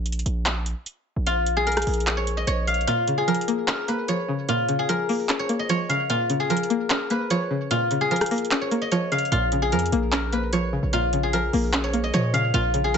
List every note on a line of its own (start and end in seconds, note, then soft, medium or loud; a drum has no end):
0.00 0.23 A#1 loud
0.06 closed hi-hat medium
0.12 closed hi-hat medium
0.19 closed hi-hat medium
0.26 0.74 A#1 loud
0.26 closed hi-hat medium
0.46 clap loud
0.46 closed hi-hat medium
0.66 closed hi-hat medium
0.86 closed hi-hat medium
1.16 1.84 A#1 loud
1.27 2.87 F4 loud
1.27 closed hi-hat medium
1.46 closed hi-hat medium
1.57 3.17 G#4 medium
1.67 3.27 A#4 medium
1.67 closed hi-hat soft
1.72 closed hi-hat medium
1.77 cross-stick loud
1.77 closed hi-hat medium
1.82 closed hi-hat medium
1.87 2.45 A#1 loud
1.87 closed hi-hat medium
1.87 open hi-hat medium
1.94 closed hi-hat medium
2.00 closed hi-hat medium
2.07 clap loud
2.07 closed hi-hat medium
2.17 2.47 C#5 medium
2.27 closed hi-hat medium
2.37 4.15 D#5 medium
2.47 2.86 A#1 loud
2.47 4.08 C#5 medium
2.47 closed hi-hat medium
2.67 4.34 F5 medium
2.67 closed hi-hat medium
2.74 closed hi-hat medium
2.81 closed hi-hat medium
2.87 3.88 A#2 loud
2.87 4.48 F4 loud
2.87 closed hi-hat medium
3.08 4.08 C#3 medium
3.08 closed hi-hat medium
3.18 4.79 G#4 medium
3.28 4.07 F3 medium
3.28 3.68 A#4 medium
3.28 closed hi-hat medium
3.35 closed hi-hat medium
3.41 closed hi-hat medium
3.48 3.87 A#3 medium
3.48 closed hi-hat medium
3.68 4.69 C#4 loud
3.68 3.94 A#4 loud
3.68 clap loud
3.68 closed hi-hat medium
3.88 4.89 A#3 medium
3.88 4.95 B4 medium
3.88 closed hi-hat medium
4.08 4.88 F3 medium
4.08 5.39 C#5 medium
4.08 closed hi-hat medium
4.29 4.67 C#3 medium
4.49 5.49 A#2 loud
4.49 6.09 F4 loud
4.49 closed hi-hat medium
4.69 5.69 C#3 medium
4.69 closed hi-hat medium
4.79 6.39 G#4 medium
4.89 5.68 F3 medium
4.89 6.50 A#4 medium
4.89 closed hi-hat medium
5.09 5.48 A#3 medium
5.09 open hi-hat medium
5.29 6.10 C#4 loud
5.29 clap loud
5.29 closed hi-hat medium
5.39 5.69 C#5 medium
5.49 6.10 A#3 medium
5.49 closed hi-hat medium
5.59 7.38 D#5 medium
5.69 6.10 F3 medium
5.69 7.30 C#5 loud
5.69 closed hi-hat medium
5.89 6.10 C#3 medium
5.89 7.56 F5 medium
5.89 closed hi-hat medium
6.10 7.10 A#2 loud
6.10 7.70 F4 loud
6.10 closed hi-hat medium
6.30 7.30 C#3 medium
6.30 closed hi-hat medium
6.40 8.01 G#4 medium
6.50 7.29 F3 medium
6.50 6.90 A#4 medium
6.50 closed hi-hat medium
6.57 closed hi-hat medium
6.63 closed hi-hat medium
6.70 7.09 A#3 medium
6.70 closed hi-hat medium
6.90 7.91 C#4 medium
6.90 7.17 A#4 medium
6.90 clap loud
6.90 closed hi-hat medium
7.10 8.11 A#3 medium
7.10 8.17 B4 medium
7.10 closed hi-hat medium
7.30 8.10 F3 medium
7.30 8.61 C#5 medium
7.30 closed hi-hat medium
7.51 7.90 C#3 medium
7.71 8.71 A#2 medium
7.71 9.31 F4 loud
7.71 closed hi-hat medium
7.91 8.92 C#3 medium
7.91 closed hi-hat medium
8.01 9.62 G#4 medium
8.11 8.91 F3 medium
8.11 9.72 A#4 medium
8.11 closed hi-hat soft
8.16 closed hi-hat medium
8.21 cross-stick loud
8.21 closed hi-hat medium
8.26 closed hi-hat medium
8.31 8.70 A#3 medium
8.31 closed hi-hat medium
8.31 open hi-hat medium
8.38 closed hi-hat medium
8.45 closed hi-hat medium
8.51 9.32 C#4 loud
8.51 clap loud
8.51 closed hi-hat medium
8.61 8.91 C#5 medium
8.71 9.32 A#3 medium
8.71 closed hi-hat medium
8.82 10.60 D#5 medium
8.92 9.32 F3 loud
8.92 10.52 C#5 medium
8.92 closed hi-hat medium
9.12 9.32 C#3 medium
9.12 10.78 F5 medium
9.12 closed hi-hat medium
9.18 closed hi-hat medium
9.25 closed hi-hat medium
9.32 9.74 A#1 loud
9.32 10.33 A#2 loud
9.32 10.93 F4 loud
9.32 closed hi-hat medium
9.52 10.53 C#3 medium
9.52 closed hi-hat medium
9.62 11.23 G#4 medium
9.72 9.91 F2 loud
9.72 10.52 F3 medium
9.72 10.12 A#4 medium
9.72 closed hi-hat medium
9.79 closed hi-hat medium
9.86 closed hi-hat medium
9.92 10.79 A#1 loud
9.92 10.31 A#3 medium
9.92 closed hi-hat medium
10.12 11.13 C#4 loud
10.12 10.39 A#4 loud
10.12 clap loud
10.12 closed hi-hat medium
10.32 11.33 A#3 medium
10.32 11.39 B4 medium
10.32 closed hi-hat medium
10.53 11.32 F3 medium
10.53 11.83 C#5 medium
10.53 closed hi-hat medium
10.73 11.12 C#3 medium
10.83 11.50 A#1 loud
10.93 11.94 A#2 medium
10.93 12.53 F4 loud
10.93 closed hi-hat medium
11.13 12.14 C#3 medium
11.13 closed hi-hat medium
11.23 12.84 G#4 medium
11.33 12.13 F3 medium
11.33 12.94 A#4 medium
11.33 closed hi-hat medium
11.53 12.11 A#1 loud
11.53 11.92 A#3 medium
11.53 open hi-hat medium
11.73 12.54 C#4 loud
11.73 clap loud
11.73 closed hi-hat medium
11.84 12.13 C#5 medium
11.93 12.54 A#3 medium
11.93 closed hi-hat medium
12.04 12.98 D#5 medium
12.14 12.52 A#2 loud
12.14 12.54 F3 medium
12.14 12.98 C#5 loud
12.14 closed hi-hat medium
12.34 12.54 C#3 medium
12.34 12.98 F5 medium
12.34 closed hi-hat medium
12.54 12.98 A#1 loud
12.54 12.98 A#2 loud
12.54 12.98 F4 loud
12.54 closed hi-hat medium
12.74 12.98 C#3 medium
12.74 closed hi-hat medium
12.84 12.98 G#4 medium
12.94 12.98 F3 medium
12.94 12.98 A#4 medium
12.94 closed hi-hat medium